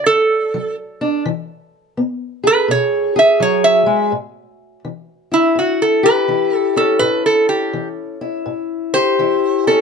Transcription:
Already playing: D3
0.06 A4
0.54 F#3
1.01 D4
1.25 E3
1.97 B3
2.44 G#4 B4
2.68 B2 C#5
3.16 G#4 E5
3.40 F#3 C#5
3.64 E5
3.86 G#3
4.12 A2
4.85 E3
5.32 E4
5.55 A2 F#4
5.82 A4
6.03 G4 B4
6.28 E3 E4
6.55 A4
6.76 C#4 A4
6.99 A2 B4
7.26 A4
7.49 G4
7.73 E3
8.21 E4
8.46 A2
8.94 G4 C5
9.19 E3 E4
9.67 C#4 A4

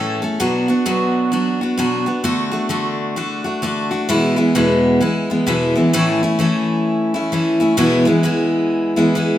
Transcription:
Already playing: A2 E3 A3 C#4 A4
0.22 A3 C#4 A4
0.40 B2 F#3 B3 D4 F#4
0.68 B3 D4 F#4
0.86 B2 F#3 B3 D4 F#4
1.32 F#3 B3 D4 F#4
1.61 B3 D4 F#4
1.78 B2 F#3 B3 D4 F#4
2.06 B3 D4 F#4
2.24 D3 A3 D4 F#4
2.51 A3 D4 F#4
2.69 D3 A3 D4 F#4
3.16 D3 A3 D4 F#4
3.44 A3 D4 F#4
3.62 D3 A3 D4 F#4
3.91 A3 D4 F#4
4.09 E2 B2 E3 G#3 B3 E4
4.36 E3 G#3 B3 E4
4.55 E2 B2 E3 G#3 B3 E4
5.00 E3 G#3 B3 E4
5.30 E3 G#3 B3 E4
5.46 E2 B2 E3 G#3 B3 E4
5.75 E3 G#3 B3 E4
5.93 A2 E3 A3 C#4 E4
6.23 A3 C#4 E4
6.39 E3 A3 C#4 E4
7.14 A3 C#4 E4
7.32 E3 A3 C#4 E4
7.60 A3 C#4 E4
7.77 E2 B2 E3 G#3 B3 E4
8.05 E3 G#3 B3 E4
8.23 E3 G#3 B3 E4
8.96 E3 G#3 B3 E4
9.15 E3 G#3 B3 E4

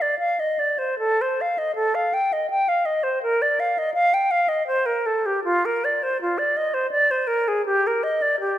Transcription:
0.02 D5
0.19 F5
0.40 D#5
0.59 D5
0.79 C5
0.99 A4
1.22 C5
1.41 F5
1.58 D#5
1.75 A4
1.95 F5
2.14 G5
2.33 D#5
2.50 G5
2.68 F5
2.86 D#5
3.03 C5
3.23 A#4
3.42 D5
3.60 F5
3.78 D#5
3.94 F5
4.14 G5
4.31 F5
4.49 D#5
4.67 C5
4.86 A#4
5.06 A4
5.26 G4
5.44 F4
5.65 A#4
5.85 D5
6.03 C5
6.21 F4
6.38 D5
6.57 D#5
6.74 C5
6.91 D5
7.11 C5
7.27 A#4
7.48 G#4
7.66 G4
7.87 A#4
8.03 D#5
8.22 D5
8.40 G4

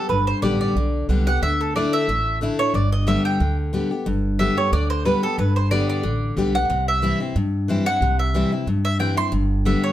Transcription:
0.09 G1 G2 B4
0.27 C5
0.42 A1 D3 G3 B3 G4 D5
0.61 D5
0.76 B1 D3
1.09 C2 D3 G3 B3 G4
1.27 B3 G4 F#5
1.42 D2 D3 E5
1.61 A4
1.76 D3 A3 D4 E4 D5
1.93 E5
2.08 A1 A2
2.41 D3 A3 D4 E4
2.59 D4 E4 C#5
2.74 G1 G2 D5
2.92 D#5
3.07 D3 G3 B3 G4 E5
3.25 G5
3.40 D2 D3
3.73 D3 G3 B3 G4
3.91 B3 G4
4.06 G1 G2
4.39 D3 G3 B3 G4 E5
4.57 B3 G4 C#5
4.72 D2 D3 D5
4.90 C5
5.05 D3 G3 B3 G4 B4
5.23 B3 G4 A4
5.38 G1 G2 B4
5.56 C5
5.71 D3 G3 B3 G4 D5
5.90 D5
6.03 A1 D3
6.36 B1 D3 G3 B3 G4
6.54 B3 G4 F#5
6.70 C2 C3
6.88 E5
7.02 E3 G3 C4 E4
7.20 C4 E4
7.35 G2
7.68 E3 G3 C4 E4
7.86 E4 F#5
8.01 C2 C3
8.19 E5
8.34 E3 G3 C4 E4
8.52 C4 E4
8.67 G2
8.85 E5
8.99 E3 G3 C4 E4 G5
9.17 C4 E4 C6
9.32 G1 G2
9.65 D3 G3 B3 G4 E5
9.84 C#5

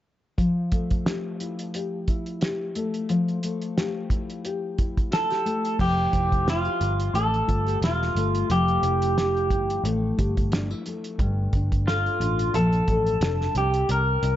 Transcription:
0.38 F3, kick, closed hi-hat
0.72 A3, kick, closed hi-hat
0.91 kick, closed hi-hat
1.06 G4, snare, closed hi-hat
1.40 E4, closed hi-hat
1.59 closed hi-hat
1.74 G4, closed hi-hat
2.08 E4, kick, closed hi-hat
2.26 closed hi-hat
2.41 G4, snare, closed hi-hat
2.75 A3, closed hi-hat
2.94 closed hi-hat
3.09 F3, closed hi-hat
3.28 closed hi-hat
3.43 A3, closed hi-hat
3.62 closed hi-hat
3.77 G4, snare, closed hi-hat
4.10 E4, kick, closed hi-hat
4.30 closed hi-hat
4.45 G4, closed hi-hat
4.78 E4, kick, closed hi-hat
4.97 kick, closed hi-hat
5.11 F4 A4, snare, closed hi-hat
5.30 G4, snare, closed hi-hat
5.45 A3, closed hi-hat
5.65 closed hi-hat
5.79 F1 F3 G4, kick, crash
6.13 F1 E4, kick, closed hi-hat
6.32 kick, closed hi-hat
6.47 F4, snare, closed hi-hat
6.65 G4
6.81 G1, closed hi-hat
7.00 closed hi-hat
7.14 A1 A3 A4, closed hi-hat
7.34 closed hi-hat
7.47 G1 F4, kick, closed hi-hat
7.66 G4, closed hi-hat
7.82 E1 F4, snare, closed hi-hat
8.02 snare
8.15 G1 A3, closed hi-hat
8.35 closed hi-hat
8.50 F1 F3 G4, closed hi-hat
8.68 closed hi-hat
8.83 F1 E4, closed hi-hat
9.02 closed hi-hat
9.17 G4, snare, closed hi-hat
9.37 closed hi-hat
9.50 G1 E4, kick, closed hi-hat
9.70 closed hi-hat
9.84 A1 A3, closed hi-hat
10.17 G1 G4, kick, closed hi-hat
10.37 kick, closed hi-hat
10.52 D4, snare, closed hi-hat
10.70 E4
10.86 A3, closed hi-hat
11.04 closed hi-hat
11.19 G1 G2, kick, closed hi-hat
11.53 G1 D4, kick, closed hi-hat
11.72 kick, closed hi-hat
11.87 F4 A4, snare, closed hi-hat
12.06 closed hi-hat
12.20 A1 D4, closed hi-hat
12.39 closed hi-hat
12.54 A#1 F3 A4, closed hi-hat
12.73 closed hi-hat
12.88 A1 A4, kick, closed hi-hat
13.06 closed hi-hat
13.21 F1 D4, snare, closed hi-hat
13.41 snare
13.55 C2 C3 G4, closed hi-hat
13.74 closed hi-hat
13.89 C2 C3 A#4, closed hi-hat
14.23 C2 E4, closed hi-hat

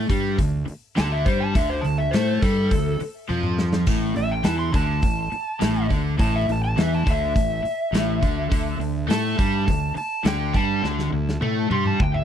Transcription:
0.09 G2 G3, kick, open hi-hat
0.37 D2 D3, kick, open hi-hat
0.66 muted overdriven electric guitar stroke, muted fingered electric bass stroke, open hi-hat
0.96 D2 D3 A5, snare, open hi-hat
1.12 E5
1.25 G2 G3 C5, kick, open hi-hat
1.40 A5
1.55 D2 D3 E5, kick, open hi-hat
1.70 C5
1.81 D2 D3 A5, open hi-hat
1.98 E5
2.11 A2 A3 C5, snare, open hi-hat
2.42 G2 G3 A4, kick, open hi-hat
2.71 D2 D3, kick, open hi-hat
3.00 muted fingered electric bass stroke, muted overdriven electric guitar stroke, open hi-hat
3.29 F2 F3, high tom
3.43 mid tom
3.59 snare
3.73 snare
3.87 A1 A2, kick, open hi-hat, splash
4.16 A1 A2 E5, open hi-hat
4.31 G5
4.43 E2 E3 A5, snare, open hi-hat
4.59 C6
4.72 D2 D3 A5, kick, open hi-hat
5.02 A1 A2, kick, open hi-hat
5.32 muted overdriven electric guitar stroke, muted fingered electric bass stroke, open hi-hat
5.60 A1 A2, snare, open hi-hat
5.89 D2 D3, kick, open hi-hat
6.18 A1 A2 A5, kick, open hi-hat
6.36 E5
6.48 A1 A2 A5, open hi-hat
6.65 A5
6.77 E2 E3 E5, snare, open hi-hat
6.94 A5
7.05 D2 D3, kick, open hi-hat
7.10 E5
7.35 A1 A2, kick, open hi-hat
7.63 muted overdriven electric guitar stroke, muted fingered electric bass stroke, open hi-hat
7.93 A1 A2, snare, open hi-hat
8.22 D2 D3, kick, open hi-hat
8.50 D2 D3, kick, open hi-hat
8.79 D2 D3, open hi-hat
9.08 A2 A3 A5, snare, open hi-hat
9.38 G2 G3, kick, open hi-hat
9.65 D2 D3, kick, open hi-hat
9.95 A5, muted overdriven electric guitar stroke, muted fingered electric bass stroke, open hi-hat
10.24 D2 D3 G5, snare, open hi-hat
10.54 G2 G3 A5, kick, open hi-hat
10.82 D2 D3, snare
10.99 snare
11.13 D2 D3
11.29 snare
11.41 A2 A3, high tom
11.71 G2 G3 C6, high tom
11.85 A5, mid tom
12.00 D2 D3 G5, kick
12.14 E5, mid tom

